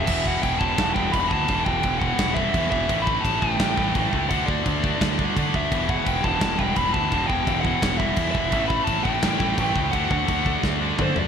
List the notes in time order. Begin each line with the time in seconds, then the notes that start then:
Already playing: E5
0.07 E1 E2 B2 E3, kick, crash
0.26 F#5, kick
0.43 E1 G5, kick, crash
0.59 E1 B2 E3 A5, kick
0.64 E2
0.78 E1, kick, snare, crash
0.94 E1 B2 E3 G5, kick
0.99 E2
1.12 E1 E2 B2 B5, kick, crash
1.16 E3
1.28 D2 A5, kick
1.48 E1 E2 B2 E3, kick, crash
1.65 E1 G5, kick
1.83 E1, kick, crash
1.99 B2 E3 F#5, kick
2.04 E2
2.19 E1, kick, snare, crash
2.34 E3 E5, kick
2.38 E2 B2
2.54 E2 B2 E3, kick, crash
2.71 E1 E5, kick
2.89 A1 A2 E3 A3, kick, crash
3.02 B5
3.07 kick
3.21 A1 A5, kick
3.25 crash
3.37 A3 G5
3.42 A1 A2 E3, kick
3.59 A1, kick, snare, crash
3.77 A1 A2 E3 A3, kick
3.94 A1 A2 E3 A3, kick, crash
4.13 C#2, kick
4.29 D2 D3 A3 D4 F#5, kick, crash
4.46 D2 D5, kick
4.66 D2, kick, crash
4.84 D3 A3 D4, kick
5.01 D2, kick, snare, crash
5.19 D3 A3 D4, kick
5.36 D3 A3 D4, kick, crash
5.54 D2 E5, kick
5.71 E1 E2 B2 E3, kick, crash
5.89 F#5, kick
6.06 E1 G5, kick, crash
6.24 E1 E2 B2 E3 A5, kick
6.41 E1, kick, snare, crash
6.58 E1 E2 B2 E3 G5, kick
6.76 E1 E2 B2 E3 B5, kick, crash
6.93 D2 A5, kick
7.12 E1 E2 B2 E3, kick, crash
7.27 E1 G5, kick
7.47 E1, kick, crash
7.61 F#5, kick
7.66 E2 B2 E3
7.82 E1, kick, snare, crash
7.98 B2 E3 E5, kick
8.03 E2
8.16 E2 B2 E3, kick, crash
8.31 E1 E5, kick
8.52 A1 A2 E3 A3, kick, crash
8.68 B5, kick
8.84 A1 A5, kick, crash
9.03 A1 A2 E3 A3 G5, kick
9.22 A1, kick, snare, crash
9.40 A1 A2 E3 A3, kick
9.58 A1 A2 E3 A3, kick, crash
9.76 C#2, kick
9.92 D2 D3 A3 F#5, kick, crash
9.96 D4
10.11 D2 F#5, kick
10.28 D2, kick, crash
10.44 D3 A3 D4, kick
10.63 D2, kick, snare
10.81 D3 A3 D4
10.98 D3 A3 D4, kick, mid tom
11.02 C5
11.16 F#2 D5, floor tom